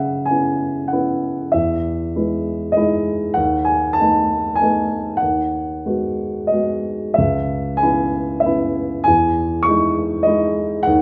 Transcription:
Already playing: C#3 E5 F#5
0.25 G#5
0.30 B3 C#4 E4
0.88 F#5
0.92 B3 C#4 E4
1.52 E2 E5
2.16 G#3 B3 E4
2.72 D#5
2.76 G#3 D#4 E4
3.34 D#2 F#5
3.65 G#5
3.93 A5
4.00 A3 B3 D#4
4.55 G#5
4.61 A3 B3 D#4
5.17 F#5
5.22 D#2
5.86 G#3 B3 F#4
6.47 D#5
6.51 G#3 B3 F#4
7.14 E5
7.18 C#2
7.77 G#5
7.83 B3 C#4 E4
8.40 E5
8.45 B3 C#4 E4
9.04 E2 G#5
9.63 C#6
9.68 G#3 D#4 E4
10.23 G#3 D#5
10.27 D#4 E4
10.83 F#5
10.87 D#2

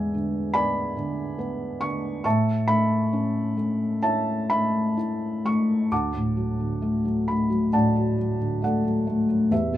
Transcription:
Already playing: E2 D3 G#3 G#4 B4 D5 E5 G#5
0.14 D3
0.54 B3 D5 G#5 B5
0.97 D3
1.39 B3
1.81 D3 C#6
2.24 A2 E5 A5 C#6
2.68 A3 E5 B5
3.13 C#4
3.57 A3
4.03 E4 C#5 E5 A5
4.50 A3 E5 B5
4.97 E4
5.45 A3 C#6
5.92 D2 F#5 A5 D6
6.14 A2
6.37 F#3
6.59 D3
6.82 A3
7.05 F#3
7.27 A3 B5
7.50 F#3
7.73 A2 D5 F#5 A5
7.96 F#4
8.18 F#3
8.40 D3
8.62 A3 A4 D5 F#5
8.84 F#3
9.07 A3
9.29 F#3
9.51 E2 G4 B4 E5
9.72 B2

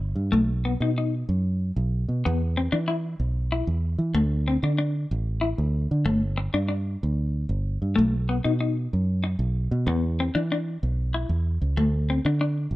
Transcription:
Already playing: G1
0.15 G2
0.32 B1 A3
0.65 B3
0.80 B2 D#4
0.98 D#4
1.29 F#2
1.76 B1
2.08 B2
2.25 E2 B3
2.57 C4
2.72 E3 D4
2.88 E4
3.20 B1
3.52 E4
3.67 E2
3.98 E3
4.14 D2 A3
4.48 C4
4.63 D3 D4
4.78 D4
5.11 A1
5.41 E4
5.58 D2
5.91 D3
6.05 G1 A3
6.38 muted clean electric guitar stroke
6.54 G2 D4
6.69 D4
7.03 D2
7.49 G1
7.82 G2
7.96 B1 A3
8.29 B3
8.44 B2 D#4
8.61 D#4
8.93 F#2
9.24 muted clean electric guitar stroke
9.39 B1
9.71 B2
9.87 E2 B3
10.20 C4
10.35 E3 D4
10.52 D4
10.83 B1
11.14 E4
11.29 E2
11.61 C#2
11.77 D2 A3
12.10 C4
12.25 D3 D4
12.41 D4
12.71 A1

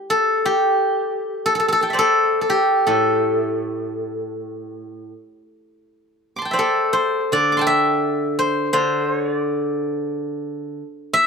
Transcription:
Already playing: G4
0.10 A4
0.46 G4
1.46 A4
1.55 A4
1.60 A4
1.68 A4
1.72 A4
1.81 A4 G5 A5
1.90 D5 E5
1.94 C5
1.99 A4
2.41 A4
2.50 G4
2.87 A2 A4
6.36 C6 D6
6.42 G5 A5
6.51 C5 D5 E5
6.59 A4
6.93 C5
7.32 D3 D5
7.52 D6
7.57 A5 C6
7.61 G5
7.67 E5
8.39 C5
8.73 D3 C5
9.10 C#5
9.33 D5
11.13 E5

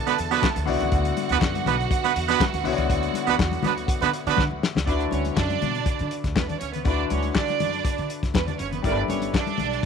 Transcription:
Already playing: D3 B3 E4 F#4 A4 D5 A5
0.06 B3 D4 F#4 B4, closed hi-hat, muted conga
0.18 E2, closed hi-hat
0.31 B3 D4 F#4 B4, snare, closed hi-hat
0.42 kick, snare, clap, high conga
0.56 D2, closed hi-hat, muted conga
0.66 C2 D3 B3 E4 F#4 D5 F#5, open hi-hat
0.80 C#2, closed hi-hat, low conga
0.92 D2, kick, closed hi-hat
1.05 closed hi-hat, muted conga
1.17 closed hi-hat, high conga
1.29 D2 B3 D4 F#4 B4, closed hi-hat
1.42 F#2, kick, snare, clap, muted conga
1.55 closed hi-hat, high conga
1.66 B1 B3 D4 F#4 B4, closed hi-hat, high conga, low conga
1.80 closed hi-hat
1.91 kick, closed hi-hat, muted conga
2.04 B3 D4 F#4 B4, closed hi-hat, muted conga
2.16 E2, closed hi-hat
2.28 B3 D4 F#4 B4, snare, closed hi-hat
2.40 kick, snare, clap, high conga
2.53 D2, closed hi-hat, muted conga
2.64 C2 D3 B3 E4 F#4 C#5, open hi-hat
2.73 D5
2.78 C#2, closed hi-hat, low conga
2.90 D2, kick, closed hi-hat
3.03 closed hi-hat, muted conga
3.14 closed hi-hat, high conga
3.27 D2 B3 D4 F#4 B4, closed hi-hat
3.39 E2, kick, snare, clap, muted conga
3.51 closed hi-hat, muted conga, high conga
3.63 D2 B3 D4 F#4 B4, closed hi-hat, high conga, low conga
3.77 closed hi-hat
3.88 kick, closed hi-hat, muted conga
4.01 D3 B3 D4 F#4 B4, closed hi-hat, muted conga
4.13 closed hi-hat
4.26 D3 B3 D4 F#4 B4, closed hi-hat
4.37 D3, kick, snare, muted conga, high conga
4.51 D2, muted conga
4.63 snare
4.75 C#2, snare, low conga
4.86 D2 D3 D4 E4 F#4 B4 D5, kick, closed hi-hat
5.00 closed hi-hat
5.11 D2 C#4 C#5, closed hi-hat, high conga
5.25 closed hi-hat, high conga
5.36 F#2 D4 D5, kick, snare, clap, muted conga
5.50 closed hi-hat, muted conga, high conga
5.62 B2, closed hi-hat, high conga, low conga
5.75 closed hi-hat
5.86 muted upright bass stroke, kick, closed hi-hat
5.99 D3, closed hi-hat, muted conga
6.11 closed hi-hat
6.24 D2, kick, snare, closed hi-hat
6.36 E2 B3 B4, kick, snare, clap, high conga
6.48 D4 D5, closed hi-hat, low conga
6.60 C#2 C#4 C#5, closed hi-hat
6.74 B3 B4, closed hi-hat, low conga
6.84 D2 D3 D4 E4 F#4 B4 D5, kick, closed hi-hat
7.10 D2 C#4 C#5, closed hi-hat, high conga
7.23 closed hi-hat, high conga
7.35 D4 D5, kick, snare, clap, muted conga
7.48 closed hi-hat, high conga
7.60 F#2, closed hi-hat, high conga, low conga
7.73 closed hi-hat
7.85 kick, closed hi-hat, muted conga
7.98 D3, closed hi-hat
8.10 closed hi-hat
8.23 D2, kick, snare, closed hi-hat
8.34 E2 B3 B4, kick, snare, clap, muted conga, high conga
8.48 D4 D5, closed hi-hat, muted conga, low conga
8.59 F#1 C#4 C#5, closed hi-hat
8.72 B3 B4, closed hi-hat, low conga
8.82 G1 G3 D4 E4 A4 A#4 D5, kick, closed hi-hat
8.92 B4
8.98 muted conga
9.08 G1 C#4 C#5, closed hi-hat, high conga
9.22 closed hi-hat, high conga
9.34 D4 D5, kick, snare, clap, muted conga
9.47 closed hi-hat, muted conga, high conga
9.58 B1, closed hi-hat, high conga, low conga
9.73 closed hi-hat

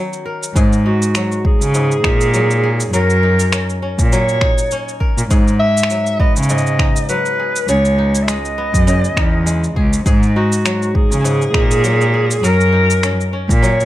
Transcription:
Already playing: D#3 F#3 B3 C#4 D#4
0.13 shaker
0.26 A#4
0.43 shaker
0.55 G#2 G#4, kick, shaker
0.73 shaker
0.86 D#4 F#4
1.02 shaker
1.15 F#3, finger snap, shaker
1.32 shaker
1.45 G#4, kick
1.61 C#3, shaker
1.74 G#2, shaker
1.92 shaker
2.04 A#2 D#4, finger snap, kick
2.21 shaker
2.34 F#3, shaker
2.51 shaker
2.64 G#4
2.80 shaker
2.92 F#2 F#3 A#4, shaker
3.10 shaker
3.23 D#4
3.40 shaker
3.52 C#4, finger snap, shaker
3.70 shaker
3.82 C#4
3.99 A#2, kick, shaker
4.13 F#3 C#5, shaker
4.29 shaker
4.41 D#4, finger snap, kick
4.58 shaker
4.71 C#4, shaker
4.89 shaker
5.00 A#4, kick
5.17 A#2, shaker
5.31 G#2 G#4, kick, shaker
5.48 shaker
5.60 E5
5.77 shaker
5.83 finger snap
5.90 F#3, shaker
6.07 shaker
6.20 B3 D#5, kick
6.36 C#3, shaker
6.43 shaker
6.49 G#2 D#5, shaker
6.58 shaker
6.67 shaker
6.79 D#4, finger snap, kick
6.96 shaker
7.09 F#3 B4, shaker
7.26 shaker
7.39 G#4
7.56 shaker
7.68 C#2 C#3 G#4 C#5, shaker
7.85 shaker
7.98 D#4
8.15 shaker
8.23 E5
8.28 G#3 D#5, finger snap, shaker
8.45 shaker
8.58 B3
8.74 F#2, kick, shaker
8.87 C#3, shaker
9.04 shaker
9.17 E2 D#4, finger snap, kick
9.46 G#3, shaker
9.64 shaker
9.76 C#2 G#4, kick
9.93 shaker
10.06 G#2 G#4, kick, shaker
10.23 shaker
10.36 D#4 F#4
10.52 shaker
10.65 F#3, finger snap, shaker
10.82 shaker
10.95 G#4, kick
11.11 C#3, shaker
11.24 G#2, shaker
11.42 shaker
11.54 A#2 D#4, finger snap, kick
11.71 shaker
11.84 F#3, shaker
12.01 shaker
12.14 G#4
12.31 shaker
12.43 F#2 F#3 A#4, shaker
12.61 shaker
12.72 D#4
12.90 shaker
13.03 C#4, finger snap, shaker
13.21 shaker
13.33 C#4
13.49 A#2, kick, shaker
13.62 F#3 C#5, shaker
13.80 shaker

